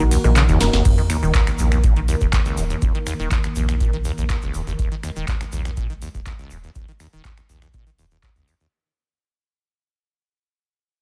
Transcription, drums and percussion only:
0.11 open hi-hat loud
0.11 ride medium
0.11 shaker loud
0.24 cross-stick medium
0.24 closed hi-hat soft
0.24 shaker soft
0.36 clap loud
0.36 closed hi-hat loud
0.36 shaker medium
0.49 closed hi-hat soft
0.49 shaker soft
0.61 snare medium
0.61 open hi-hat medium
0.61 ride medium
0.61 shaker medium
0.73 snare medium
0.73 closed hi-hat soft
0.73 shaker soft
0.85 kick loud
0.85 closed hi-hat medium
0.85 crash medium
0.85 shaker medium
0.98 closed hi-hat soft
1.10 finger snap medium
1.10 open hi-hat loud
1.10 shaker medium
1.23 closed hi-hat soft
1.23 shaker soft
1.34 kick loud
1.34 clap loud
1.34 closed hi-hat medium
1.34 shaker soft
1.47 finger snap medium
1.47 closed hi-hat soft
1.47 shaker soft
1.59 open hi-hat medium
1.59 shaker medium
1.71 finger snap medium
1.71 closed hi-hat soft
1.71 shaker soft
1.84 kick loud
1.84 closed hi-hat loud
1.84 shaker soft
1.96 closed hi-hat soft
2.08 open hi-hat loud
2.08 shaker medium
2.21 kick medium
2.21 closed hi-hat soft
2.21 shaker soft
2.33 kick loud
2.33 clap loud
2.33 closed hi-hat medium
2.33 shaker medium
2.46 closed hi-hat soft
2.46 shaker soft
2.57 open hi-hat medium
2.57 shaker medium
2.70 closed hi-hat soft
2.70 shaker soft
2.82 kick loud
2.82 closed hi-hat medium
2.82 shaker medium
2.95 closed hi-hat soft
3.07 finger snap medium
3.07 open hi-hat loud
3.07 shaker medium
3.19 closed hi-hat soft
3.19 shaker soft
3.31 kick loud
3.31 clap loud
3.31 closed hi-hat medium
3.31 shaker medium
3.44 finger snap medium
3.44 closed hi-hat soft
3.44 shaker soft
3.56 open hi-hat loud
3.56 shaker medium
3.69 finger snap medium
3.69 closed hi-hat soft
3.69 shaker soft
3.80 kick loud
3.80 closed hi-hat medium
3.80 shaker soft
3.93 closed hi-hat soft
4.05 open hi-hat loud
4.05 shaker medium
4.18 closed hi-hat soft
4.18 shaker soft
4.29 kick loud
4.29 clap loud
4.29 closed hi-hat medium
4.29 shaker medium
4.42 closed hi-hat soft
4.42 shaker soft
4.54 open hi-hat medium
4.54 shaker medium
4.67 closed hi-hat soft
4.67 shaker soft
4.79 kick loud
4.79 closed hi-hat medium
4.79 shaker soft
4.92 closed hi-hat soft
5.03 finger snap medium
5.03 open hi-hat loud
5.03 shaker medium
5.16 closed hi-hat soft
5.16 shaker soft
5.28 kick loud
5.28 clap loud
5.28 closed hi-hat medium
5.28 shaker soft
5.41 finger snap medium
5.41 closed hi-hat soft
5.41 shaker soft
5.52 open hi-hat medium
5.52 shaker medium
5.65 finger snap medium
5.65 closed hi-hat soft
5.65 shaker soft
5.77 kick loud
5.77 closed hi-hat medium
5.77 shaker soft
5.90 closed hi-hat soft
6.02 open hi-hat loud
6.02 shaker medium
6.14 kick medium
6.14 closed hi-hat soft
6.14 shaker soft
6.26 kick loud
6.26 clap loud
6.26 closed hi-hat medium
6.26 shaker medium
6.39 closed hi-hat soft
6.39 shaker soft
6.50 open hi-hat medium
6.50 shaker medium
6.64 closed hi-hat soft
6.64 shaker soft
6.75 kick loud
6.75 closed hi-hat medium
6.75 shaker medium
6.88 closed hi-hat soft
7.00 finger snap medium
7.00 open hi-hat loud
7.00 shaker medium
7.13 closed hi-hat soft
7.13 shaker soft
7.25 kick loud
7.25 clap loud
7.25 closed hi-hat medium
7.25 shaker soft
7.37 finger snap medium
7.37 closed hi-hat soft
7.37 shaker soft
7.49 open hi-hat loud
7.49 shaker medium
7.62 finger snap medium
7.62 closed hi-hat soft
7.62 shaker soft
7.73 kick loud
7.73 closed hi-hat medium
7.73 shaker medium
7.87 closed hi-hat soft
7.87 shaker soft
7.98 open hi-hat loud
7.98 shaker medium
8.11 closed hi-hat soft
8.11 shaker soft
8.23 kick loud
8.23 clap loud
8.23 closed hi-hat medium
8.23 shaker soft
8.36 closed hi-hat soft
8.36 shaker soft
8.48 open hi-hat medium
8.48 shaker loud
8.60 closed hi-hat soft
8.60 shaker soft

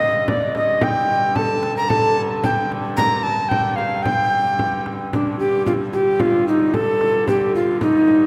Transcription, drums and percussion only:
0.28 frame drum medium
0.55 frame drum medium
0.81 frame drum medium
1.36 frame drum medium
1.63 frame drum medium
1.90 frame drum medium
2.44 frame drum medium
2.72 frame drum medium
2.98 frame drum medium
3.51 frame drum medium
3.78 frame drum medium
4.05 frame drum medium
4.33 frame drum soft
4.59 frame drum medium
4.86 frame drum medium
5.13 frame drum medium
5.40 frame drum soft
5.66 frame drum medium
5.93 frame drum medium
6.19 frame drum medium
6.47 frame drum soft
6.74 frame drum medium
7.01 frame drum medium
7.28 frame drum medium
7.54 frame drum soft
7.81 frame drum medium
8.08 frame drum medium

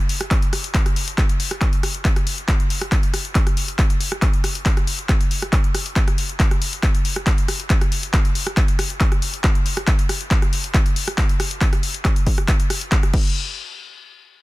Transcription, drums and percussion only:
0.09 open hi-hat loud
0.21 cross-stick medium
0.21 closed hi-hat medium
0.31 kick loud
0.31 clap loud
0.31 closed hi-hat loud
0.42 closed hi-hat medium
0.53 cross-stick medium
0.53 open hi-hat loud
0.64 closed hi-hat medium
0.75 kick loud
0.75 clap loud
0.75 closed hi-hat medium
0.86 cross-stick medium
0.86 closed hi-hat medium
0.96 open hi-hat medium
1.08 closed hi-hat medium
1.18 kick loud
1.18 cross-stick medium
1.18 clap loud
1.18 closed hi-hat loud
1.29 closed hi-hat medium
1.40 open hi-hat loud
1.51 cross-stick medium
1.51 closed hi-hat medium
1.61 kick loud
1.61 clap loud
1.61 closed hi-hat loud
1.73 closed hi-hat medium
1.83 cross-stick medium
1.83 open hi-hat loud
1.95 closed hi-hat medium
2.05 kick loud
2.05 clap loud
2.05 closed hi-hat loud
2.16 cross-stick medium
2.16 closed hi-hat medium
2.27 open hi-hat loud
2.38 closed hi-hat medium
2.48 kick loud
2.48 cross-stick medium
2.48 clap loud
2.48 closed hi-hat loud
2.60 closed hi-hat medium
2.70 open hi-hat loud
2.81 cross-stick medium
2.81 closed hi-hat medium
2.92 kick loud
2.92 clap loud
2.92 closed hi-hat loud
3.03 closed hi-hat medium
3.14 cross-stick medium
3.14 open hi-hat loud
3.25 closed hi-hat medium
3.35 kick loud
3.35 clap loud
3.35 closed hi-hat medium
3.47 cross-stick medium
3.47 closed hi-hat medium
3.57 open hi-hat loud
3.68 closed hi-hat medium
3.79 kick loud
3.79 cross-stick medium
3.79 clap loud
3.79 closed hi-hat medium
3.90 closed hi-hat medium
4.00 open hi-hat loud
4.12 cross-stick medium
4.12 closed hi-hat medium
4.22 kick loud
4.22 clap loud
4.22 closed hi-hat medium
4.33 closed hi-hat medium
4.44 cross-stick medium
4.44 open hi-hat loud
4.55 closed hi-hat medium
4.66 kick loud
4.66 clap loud
4.66 closed hi-hat loud
4.77 cross-stick medium
4.77 closed hi-hat soft
4.87 open hi-hat loud
4.99 closed hi-hat medium
5.09 kick loud
5.09 cross-stick medium
5.09 clap loud
5.09 closed hi-hat medium
5.21 closed hi-hat soft
5.31 open hi-hat medium
5.42 cross-stick medium
5.42 closed hi-hat medium
5.53 kick loud
5.53 clap loud
5.53 closed hi-hat medium
5.64 closed hi-hat medium
5.75 cross-stick medium
5.75 open hi-hat loud
5.86 closed hi-hat medium
5.96 kick loud
5.96 clap loud
5.96 closed hi-hat medium
6.08 cross-stick medium
6.08 closed hi-hat soft
6.18 open hi-hat loud
6.29 closed hi-hat soft
6.40 kick loud
6.40 clap loud
6.40 closed hi-hat medium
6.51 cross-stick medium
6.51 closed hi-hat soft
6.62 open hi-hat loud
6.73 closed hi-hat soft
6.83 kick loud
6.83 cross-stick medium
6.83 clap loud
6.83 closed hi-hat medium
6.95 closed hi-hat soft
7.05 open hi-hat loud
7.16 cross-stick medium
7.16 closed hi-hat medium
7.27 kick loud
7.27 clap loud
7.27 closed hi-hat medium
7.38 closed hi-hat soft
7.48 cross-stick medium
7.48 open hi-hat loud
7.60 closed hi-hat soft
7.70 kick loud
7.70 clap loud
7.70 closed hi-hat medium
7.81 cross-stick medium
7.81 closed hi-hat medium
7.92 open hi-hat medium
8.03 closed hi-hat medium
8.14 kick loud
8.14 cross-stick medium
8.14 clap loud
8.14 closed hi-hat medium
8.25 closed hi-hat soft
8.35 open hi-hat loud
8.47 cross-stick medium
8.47 closed hi-hat soft
8.57 kick loud
8.57 clap loud
8.57 closed hi-hat medium
8.68 closed hi-hat soft
8.79 cross-stick medium
8.79 open hi-hat medium
8.90 closed hi-hat soft
9.01 kick loud
9.01 clap loud
9.01 closed hi-hat medium
9.12 cross-stick medium
9.12 closed hi-hat soft
9.22 open hi-hat loud
9.34 closed hi-hat medium
9.44 kick loud
9.44 cross-stick medium
9.44 clap loud
9.44 closed hi-hat medium
9.55 closed hi-hat soft
9.66 open hi-hat medium
9.77 cross-stick medium
9.77 closed hi-hat medium
9.87 kick loud
9.87 clap loud
9.87 closed hi-hat medium
9.99 closed hi-hat medium
10.09 cross-stick medium
10.09 open hi-hat loud
10.21 closed hi-hat medium
10.31 kick loud
10.31 clap loud
10.31 closed hi-hat medium
10.42 cross-stick medium
10.42 closed hi-hat soft
10.53 open hi-hat medium
10.64 closed hi-hat medium
10.74 kick loud
10.74 cross-stick medium
10.74 clap loud
10.74 closed hi-hat medium
10.86 closed hi-hat medium
10.96 open hi-hat loud
11.08 cross-stick medium
11.08 closed hi-hat medium
11.18 kick loud
11.18 clap loud
11.18 closed hi-hat medium
11.29 closed hi-hat medium
11.40 cross-stick medium
11.40 open hi-hat medium
11.51 closed hi-hat medium
11.61 kick loud
11.61 clap loud
11.61 closed hi-hat medium
11.73 cross-stick medium
11.73 closed hi-hat medium
11.83 open hi-hat loud
11.94 closed hi-hat medium
12.05 kick loud
12.05 cross-stick medium
12.05 clap loud
12.05 closed hi-hat medium
12.16 closed hi-hat medium
12.27 kick medium
12.27 open hi-hat medium
12.38 cross-stick medium
12.38 closed hi-hat medium
12.48 kick loud
12.48 clap loud
12.48 closed hi-hat loud
12.60 closed hi-hat medium
12.70 cross-stick medium
12.70 open hi-hat loud
12.81 closed hi-hat medium
12.92 kick loud
12.92 clap loud
12.92 closed hi-hat medium
13.03 cross-stick medium
13.03 closed hi-hat medium
13.14 kick loud
13.14 crash medium

